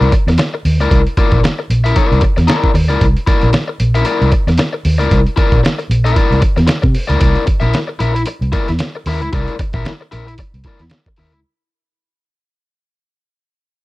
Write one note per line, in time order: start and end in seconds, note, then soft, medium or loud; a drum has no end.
0.00 0.11 C2 loud
0.00 0.10 E4 medium
0.00 0.11 A#4 loud
0.00 0.11 D5 loud
0.00 closed hi-hat soft
0.12 muted overdriven electric guitar stroke soft
0.12 kick medium
0.12 closed hi-hat medium
0.27 0.37 E2 loud
0.27 muted overdriven electric guitar stroke medium
0.27 snare soft
0.27 closed hi-hat medium
0.38 muted overdriven electric guitar stroke soft
0.38 snare loud
0.38 closed hi-hat loud
0.54 muted overdriven electric guitar stroke soft
0.65 0.79 D#2 medium
0.65 open hi-hat medium
0.79 0.89 C#2 loud
0.79 1.00 E4 medium
0.79 1.00 A#4 medium
0.79 1.00 D5 medium
0.79 closed hi-hat soft
0.91 1.03 C2 loud
0.91 kick loud
0.91 closed hi-hat medium
1.07 closed hi-hat soft
1.17 1.39 E4 medium
1.17 1.39 A#4 medium
1.17 1.39 D5 medium
1.17 kick loud
1.17 closed hi-hat medium
1.32 1.42 A#1 loud
1.32 kick medium
1.32 closed hi-hat soft
1.44 muted overdriven electric guitar stroke medium
1.44 snare loud
1.44 closed hi-hat medium
1.59 muted overdriven electric guitar stroke soft
1.70 1.92 A#1 medium
1.70 closed hi-hat medium
1.84 1.95 E4 medium
1.84 1.96 A#4 medium
1.84 1.97 E5 medium
1.84 closed hi-hat medium
1.96 2.20 E4 loud
1.96 2.21 A#4 medium
1.96 2.21 D5 loud
1.96 kick medium
1.96 closed hi-hat loud
2.12 2.21 C2 medium
2.12 closed hi-hat soft
2.21 muted overdriven electric guitar stroke soft
2.21 kick loud
2.21 closed hi-hat medium
2.37 2.47 E2 medium
2.37 muted overdriven electric guitar stroke medium
2.37 snare soft
2.37 closed hi-hat medium
2.48 2.69 E4 medium
2.48 2.70 A#4 medium
2.48 2.70 D5 medium
2.48 snare loud
2.48 closed hi-hat loud
2.64 kick loud
2.74 2.89 D#2 medium
2.74 muted overdriven electric guitar stroke soft
2.74 open hi-hat medium
2.89 2.99 C#2 medium
2.89 3.04 E4 medium
2.89 3.04 A#4 medium
2.89 3.04 D5 medium
2.89 closed hi-hat soft
3.01 3.14 C2 loud
3.01 kick loud
3.01 closed hi-hat medium
3.17 closed hi-hat soft
3.27 3.48 E4 medium
3.27 3.48 A#4 medium
3.27 3.49 D5 medium
3.27 kick loud
3.27 closed hi-hat medium
3.41 3.52 A#1 loud
3.41 closed hi-hat soft
3.53 muted overdriven electric guitar stroke soft
3.53 snare loud
3.53 closed hi-hat medium
3.68 muted overdriven electric guitar stroke soft
3.80 4.02 A#1 medium
3.80 closed hi-hat medium
3.95 4.04 E4 medium
3.95 4.05 A#4 loud
3.95 4.06 E5 loud
3.95 closed hi-hat medium
4.05 4.30 E4 medium
4.05 4.31 A#4 medium
4.05 4.31 D5 loud
4.05 closed hi-hat medium
4.22 4.31 C2 loud
4.22 closed hi-hat soft
4.32 muted overdriven electric guitar stroke soft
4.32 kick medium
4.32 closed hi-hat medium
4.47 4.57 E2 medium
4.47 muted overdriven electric guitar stroke soft
4.47 snare soft
4.47 closed hi-hat medium
4.58 muted overdriven electric guitar stroke medium
4.58 snare loud
4.58 closed hi-hat loud
4.73 muted overdriven electric guitar stroke medium
4.85 4.99 D#2 medium
4.85 open hi-hat medium
4.98 5.09 C#2 loud
4.98 5.20 E4 medium
4.98 5.19 A#4 medium
4.98 5.19 D5 medium
4.98 closed hi-hat soft
5.11 5.24 C2 loud
5.11 kick loud
5.11 closed hi-hat medium
5.27 closed hi-hat soft
5.36 5.58 E4 medium
5.36 5.59 A#4 medium
5.36 5.59 D5 medium
5.36 kick loud
5.36 closed hi-hat medium
5.52 5.62 A#1 medium
5.52 kick medium
5.52 closed hi-hat soft
5.63 muted overdriven electric guitar stroke soft
5.63 snare loud
5.63 closed hi-hat medium
5.79 muted overdriven electric guitar stroke soft
5.79 closed hi-hat soft
5.90 6.12 A#1 medium
5.90 closed hi-hat medium
6.04 6.15 E4 medium
6.04 6.16 A#4 medium
6.04 6.17 E5 medium
6.04 closed hi-hat medium
6.16 6.41 E4 medium
6.16 6.41 A#4 medium
6.16 6.41 D5 loud
6.16 kick medium
6.16 closed hi-hat medium
6.31 6.41 C2 medium
6.31 closed hi-hat soft
6.42 muted overdriven electric guitar stroke soft
6.42 kick medium
6.42 closed hi-hat medium
6.57 6.67 E2 medium
6.57 muted overdriven electric guitar stroke medium
6.57 snare soft
6.57 closed hi-hat medium
6.67 muted overdriven electric guitar stroke medium
6.67 snare loud
6.67 closed hi-hat loud
6.82 6.94 C3 loud
6.82 muted overdriven electric guitar stroke soft
6.82 kick loud
6.82 closed hi-hat soft
6.95 open hi-hat medium
7.08 7.20 C#2 medium
7.08 7.18 E4 medium
7.08 7.19 A#4 medium
7.08 7.20 D5 medium
7.08 closed hi-hat soft
7.19 7.34 C2 loud
7.19 7.42 E4 medium
7.19 7.42 A#4 medium
7.19 7.43 D5 loud
7.19 kick loud
7.19 closed hi-hat medium
7.35 closed hi-hat soft
7.46 muted overdriven electric guitar stroke soft
7.46 kick loud
7.46 closed hi-hat medium
7.60 7.72 A#1 medium
7.60 7.77 E4 medium
7.60 7.77 A#4 medium
7.60 7.76 E5 medium
7.60 closed hi-hat soft
7.74 snare loud
7.74 closed hi-hat medium
7.88 muted overdriven electric guitar stroke medium
7.99 8.23 A#1 medium
7.99 8.21 E4 medium
7.99 8.14 A#4 loud
7.99 8.14 E5 loud
7.99 closed hi-hat medium
8.14 muted overdriven electric guitar stroke soft
8.14 closed hi-hat medium
8.26 muted overdriven electric guitar stroke medium
8.26 closed hi-hat medium
8.41 8.51 C2 loud
8.41 closed hi-hat soft
8.52 8.70 E4 medium
8.52 8.68 A#4 medium
8.52 8.67 D5 medium
8.52 kick medium
8.52 closed hi-hat medium
8.68 8.79 E2 medium
8.68 muted overdriven electric guitar stroke soft
8.68 snare soft
8.68 closed hi-hat medium
8.79 snare loud
8.79 closed hi-hat loud
8.95 muted overdriven electric guitar stroke soft
9.06 9.21 D#2 medium
9.06 9.28 E4 medium
9.06 9.21 A#4 loud
9.06 9.22 E5 loud
9.06 open hi-hat medium
9.21 9.31 C#2 loud
9.21 muted overdriven electric guitar stroke medium
9.21 closed hi-hat soft
9.33 9.46 C2 loud
9.33 9.54 E4 medium
9.33 9.54 A#4 medium
9.33 9.55 D5 loud
9.33 kick loud
9.33 closed hi-hat medium
9.48 closed hi-hat soft
9.59 muted overdriven electric guitar stroke soft
9.59 kick medium
9.59 closed hi-hat medium
9.73 9.84 A#1 medium
9.73 9.89 E4 soft
9.73 9.89 A#4 medium
9.73 9.89 E5 medium
9.73 kick medium
9.73 closed hi-hat soft
9.85 snare loud
9.85 closed hi-hat medium
10.01 muted overdriven electric guitar stroke soft
10.12 10.35 A#1 medium
10.12 10.33 E4 medium
10.12 10.27 A#4 medium
10.12 10.27 E5 medium
10.12 closed hi-hat medium
10.27 muted overdriven electric guitar stroke medium
10.27 closed hi-hat medium
10.38 muted overdriven electric guitar stroke soft
10.38 kick medium
10.38 closed hi-hat medium
10.54 10.63 C2 medium
10.54 closed hi-hat soft
10.64 10.82 E4 medium
10.64 10.81 A#4 medium
10.64 10.80 D5 medium
10.64 kick medium
10.64 closed hi-hat medium
10.79 10.90 E2 loud
10.79 muted overdriven electric guitar stroke medium
10.79 snare soft
10.79 closed hi-hat medium
10.90 snare loud
10.90 closed hi-hat medium
11.06 muted overdriven electric guitar stroke soft
11.06 kick loud
11.16 11.33 D#2 medium
11.16 11.39 E4 medium
11.16 11.33 A#4 medium
11.16 11.33 E5 medium
11.16 open hi-hat medium
11.32 11.42 C#2 medium
11.32 muted overdriven electric guitar stroke soft
11.32 closed hi-hat soft